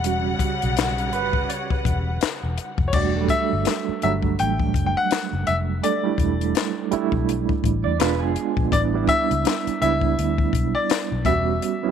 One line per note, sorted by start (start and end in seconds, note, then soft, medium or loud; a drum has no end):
0.00 0.33 E1 loud
0.00 2.90 C#3 medium
0.00 2.90 G3 medium
0.00 0.23 G4 medium
0.00 2.90 F#5 medium
0.04 1.09 G3 medium
0.04 1.10 C#4 soft
0.04 1.10 F#4 medium
0.04 closed hi-hat medium
0.39 kick medium
0.39 closed hi-hat medium
0.62 1.14 B1 medium
0.62 closed hi-hat soft
0.77 snare loud
0.77 clap medium
0.77 closed hi-hat medium
0.98 closed hi-hat soft
1.13 1.46 G1 medium
1.13 1.49 B4 medium
1.13 closed hi-hat medium
1.33 kick medium
1.49 1.71 C#5 medium
1.49 closed hi-hat medium
1.70 2.75 B4 medium
1.70 muted fingered electric bass stroke soft
1.70 kick medium
1.85 2.18 E1 medium
1.85 kick loud
1.85 closed hi-hat medium
2.21 snare loud
2.21 clap loud
2.21 closed hi-hat medium
2.43 2.56 E1 medium
2.58 closed hi-hat medium
2.78 2.92 F1 medium
2.78 kick medium
2.88 2.94 C#5 medium
2.93 3.26 E1 loud
2.93 3.12 G3 medium
2.93 3.12 A3 medium
2.93 3.12 D4 medium
2.93 3.13 F#4 medium
2.93 3.31 D5 medium
2.93 kick loud
2.93 crash medium
3.15 3.20 F#3 medium
3.15 3.91 A3 medium
3.15 3.91 D4 medium
3.15 3.92 A4 medium
3.21 3.94 G3 medium
3.28 3.98 E5 loud
3.28 kick medium
3.28 closed hi-hat medium
3.53 3.65 G1 medium
3.65 snare loud
3.65 clap medium
3.65 closed hi-hat medium
3.89 muted fingered electric bass stroke soft
4.02 4.35 G1 medium
4.02 4.04 F#3 medium
4.02 5.28 F#3 medium
4.02 5.27 A3 medium
4.02 5.28 D4 medium
4.02 4.11 E5 medium
4.02 closed hi-hat medium
4.08 5.30 G3 medium
4.23 kick medium
4.39 4.72 A1 medium
4.39 4.85 G5 loud
4.39 closed hi-hat medium
4.59 kick medium
4.74 4.94 F#1 medium
4.74 kick medium
4.74 closed hi-hat medium
4.86 4.95 G5 medium
4.97 5.49 F#5 loud
5.11 snare loud
5.11 clap medium
5.11 closed hi-hat medium
5.33 5.46 F#1 medium
5.47 5.80 F1 medium
5.47 5.55 E5 medium
5.47 closed hi-hat medium
5.82 6.00 G3 medium
5.82 6.01 A3 medium
5.82 6.01 D4 medium
5.82 6.01 A4 medium
5.82 6.88 D5 medium
5.82 closed hi-hat medium
6.04 6.80 G3 medium
6.04 6.80 A3 medium
6.04 6.80 D4 medium
6.04 6.81 E4 medium
6.18 6.51 E1 medium
6.18 kick medium
6.18 closed hi-hat medium
6.41 closed hi-hat soft
6.55 snare loud
6.55 clap medium
6.55 closed hi-hat medium
6.92 8.00 G3 medium
6.92 8.00 A3 medium
6.92 8.00 D4 medium
6.92 8.01 E4 loud
6.92 muted fingered electric bass stroke soft
6.92 closed hi-hat medium
7.12 7.45 B1 medium
7.12 kick medium
7.29 closed hi-hat medium
7.49 kick medium
7.64 7.83 A1 medium
7.64 kick medium
7.64 closed hi-hat medium
7.84 7.99 E2 loud
7.84 7.99 D5 medium
8.00 8.22 E1 loud
8.00 8.63 G#3 loud
8.00 8.63 B3 medium
8.00 8.64 D4 medium
8.00 8.64 F4 loud
8.00 8.20 B4 medium
8.00 snare loud
8.00 clap loud
8.00 closed hi-hat medium
8.20 8.35 F1 medium
8.20 8.69 G#4 medium
8.36 closed hi-hat medium
8.57 8.71 A#1 medium
8.57 kick medium
8.72 9.05 A1 loud
8.72 8.90 G3 medium
8.72 8.91 B3 medium
8.72 8.91 D4 medium
8.72 8.91 E4 medium
8.72 8.80 D5 loud
8.72 kick loud
8.72 closed hi-hat medium
8.94 9.70 G3 medium
8.94 9.70 B3 medium
8.94 9.70 D4 medium
8.94 9.70 E4 medium
9.07 9.80 E5 loud
9.07 kick medium
9.07 closed hi-hat medium
9.31 9.44 C#2 medium
9.31 closed hi-hat soft
9.45 snare loud
9.45 clap medium
9.45 closed hi-hat medium
9.67 muted fingered electric bass stroke soft
9.67 closed hi-hat soft
9.81 10.14 C#2 loud
9.81 11.06 G3 medium
9.81 11.06 B3 medium
9.81 11.06 D4 medium
9.81 11.07 E4 medium
9.81 10.77 E5 loud
9.81 closed hi-hat medium
10.01 kick medium
10.18 10.50 D2 medium
10.18 closed hi-hat medium
10.38 kick medium
10.53 10.72 B1 medium
10.53 kick medium
10.53 closed hi-hat medium
10.75 11.27 D5 medium
10.90 snare loud
10.90 clap medium
10.90 closed hi-hat medium
11.12 11.24 B1 medium
11.25 11.58 E1 medium
11.25 11.73 G3 medium
11.25 11.73 B3 medium
11.25 11.73 C#4 medium
11.25 11.74 F#4 medium
11.25 11.91 E5 medium
11.25 kick loud
11.25 closed hi-hat medium
11.62 closed hi-hat medium
11.82 11.88 F#3 medium
11.82 11.91 B3 medium
11.82 11.91 C#4 medium
11.82 11.91 E4 medium